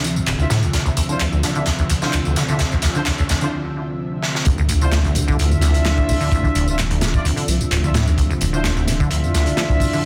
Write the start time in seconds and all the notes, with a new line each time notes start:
Already playing: D2 C3 F3 E5, riser
0.04 F3, closed hi-hat, tambourine
0.16 D2, tambourine
0.26 D1, clap, closed hi-hat, tambourine
0.39 D2 D4 E4 F4 E5, tambourine
0.50 A2, snare, closed hi-hat, tambourine
0.62 D2, tambourine
0.73 D2, snare, closed hi-hat, tambourine
0.85 D2, tambourine
0.97 D2, closed hi-hat, tambourine
1.09 D3 D4 E4 F4 C5, tambourine
1.20 D2, clap, closed hi-hat, tambourine
1.32 D2, tambourine
1.43 D3, snare, closed hi-hat, tambourine
1.55 D3 D4 E4 F4 E5, tambourine
1.66 D2, snare, closed hi-hat, tambourine
1.79 D2, tambourine
1.90 D2, closed hi-hat, tambourine
2.02 D3 D4 E4 F4 C5, snare, tambourine
2.13 D2, clap, closed hi-hat, tambourine
2.25 D2, tambourine
2.36 D3, snare, closed hi-hat, tambourine
2.49 D3 D4 E4 F4 E5, tambourine
2.59 D2, snare, closed hi-hat, tambourine
2.72 D2, tambourine
2.82 D2, snare, closed hi-hat, tambourine
2.95 D3 D4 E4 F4 C5, tambourine
3.05 D2, snare, clap, closed hi-hat, tambourine
3.18 D2, tambourine
3.29 D2, snare, closed hi-hat, tambourine
3.41 D3 D4 E4 F4 C5, tambourine
4.23 snare
4.35 snare
4.45 D2 C3 D3 F3 E5, kick, closed hi-hat, tambourine, impact
4.58 D2, tambourine
4.69 D2, closed hi-hat, tambourine
4.81 D3 D4 E4 F4 C5, tambourine
4.92 D2, snare, clap, closed hi-hat, tambourine
5.04 D2, tambourine
5.15 D3, closed hi-hat, tambourine
5.28 D3 D4 E4 F4 E5, kick, tambourine
5.39 D2, closed hi-hat, tambourine
5.51 F2, tambourine
5.61 D2, snare, closed hi-hat, tambourine
5.74 C2, closed hi-hat, tambourine
5.85 F3, snare, clap, closed hi-hat, tambourine
5.97 D2, kick, tambourine
6.08 D3, kick, open hi-hat, tambourine
6.20 D3, tambourine
6.32 D2, kick, closed hi-hat, tambourine
6.44 D3, kick, tambourine
6.55 D1 D2, closed hi-hat, tambourine
6.67 C2 D4 E4 F4 E5, tambourine
6.78 D1, snare, clap, closed hi-hat, tambourine
6.90 D2, closed hi-hat, tambourine
7.01 D3, snare, closed hi-hat, tambourine
7.14 D2 D4 E4 F4 D5, kick, tambourine
7.25 D2, closed hi-hat, tambourine
7.36 D3, closed hi-hat, tambourine
7.48 C2 F3, closed hi-hat, tambourine
7.60 D2, tambourine
7.71 D1 D2, clap, closed hi-hat, tambourine
7.83 D2 D4 E4 F4 E5, tambourine
7.94 A2, snare, closed hi-hat, tambourine
8.06 D2, tambourine
8.17 D2, kick, closed hi-hat, tambourine
8.30 D2, tambourine
8.41 D1 D2, closed hi-hat, tambourine
8.53 D3 D4 E4 F4 C5, tambourine
8.64 D2, snare, clap, closed hi-hat, tambourine
8.76 D2, tambourine
8.87 D3, snare, closed hi-hat, tambourine
9.00 D3 D4 E4 F4 E5, kick, tambourine
9.10 D2, closed hi-hat, tambourine
9.23 F2, tambourine
9.34 D2, snare, closed hi-hat, tambourine
9.46 C2, closed hi-hat, tambourine
9.57 F3, snare, clap, closed hi-hat, tambourine
9.69 D2, kick, tambourine
9.80 D3, kick, open hi-hat, tambourine
9.93 D3, tambourine